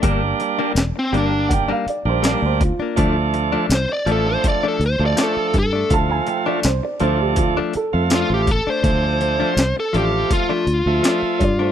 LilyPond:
<<
  \new Staff \with { instrumentName = "Upright piano" } { \time 4/4 \key d \minor \tempo 4 = 82 r2 <fis'' g''>16 f''16 d''16 c''16 d''16 c''16 f'8~ | f'8. r2. r16 | a''16 gis''16 g''16 d''16 c''16 d''16 c''16 g'16 f'8 a'8 r4 | r2. r8 <cis'' d''>16 c''16 | }
  \new Staff \with { instrumentName = "Lead electric guitar" } { \time 4/4 \key d \minor r4 r16 c'16 d'8 r2 | r4 c''16 d''16 a'16 c''16 d''16 a'16 c''16 d''16 a'8 a'8 | r2. f'16 g'16 a'16 c''16~ | c''4~ c''16 a'16 g'8 f'2 | }
  \new Staff \with { instrumentName = "Clean electric guitar" } { \time 4/4 \key d \minor <g bes d'>16 r8 <g bes d'>16 r8 <g bes d'>16 r8 <g bes d'>16 r8 <g bes d'>16 r8 <bes d'>16 | <f a d'>16 r8 <f a d'>16 r8 <f a d'>16 r8 <f a d'>16 r8 <f a d'>16 r8 <a d'>16 | r8. <f a d'>16 r8 <f a d'>16 r8 <f a d'>16 r8 <f a d'>16 r8 <a d'>16 | r8. <f a d'>16 r8 <f a d'>16 r8 <f a d'>16 r8 <f a d'>16 r8 <a d'>16 | }
  \new Staff \with { instrumentName = "Tonewheel organ" } { \time 4/4 \key d \minor <g bes d'>4 r8 <g bes d'>8. r8 <g bes d'>8. r8 | <f a d'>4 r8 <f a d'>8. r8 <f a d'>8. r8 | <f a f'>4 r8 <f a d'>8. r8 <f a f'>8. r8 | <f a d'>4 r8 <f a f'>8. r8 <f a e''>8. r8 | }
  \new Staff \with { instrumentName = "Fingered electric bass" } { \clef bass \time 4/4 \key d \minor g,,8 r8 e,,16 r16 g,,4 r16 bes,,8 d,8 r16 | d,4 c,16 r16 a,,8 r8 d,16 d,16 r8 g,8 | d,8 r8 c,16 r16 d,4 r16 f,8 a,,8 r16 | d,4 c,16 r16 a,,8 r8 d,16 d,16 r8 g,8 | }
  \new DrumStaff \with { instrumentName = "Drums" } \drummode { \time 4/4 <hh bd>8 hh8 <hh sn tamb>8 hh8 <hh bd>8 hh8 <hh sn tamb>8 <hh bd>8 | <hh bd>8 hh8 <hh sn tamb>8 hh8 <hh bd>8 hh8 <hh sn tamb>8 <hh bd>8 | <hh bd>8 hh8 <hh sn tamb>8 hh8 <hh bd>8 hh8 <hh sn tamb>8 <hh bd>8 | <hh bd>8 hh8 <hh sn tamb>8 hh8 <hh bd>8 hh8 <hh sn tamb>8 <hh bd>8 | }
>>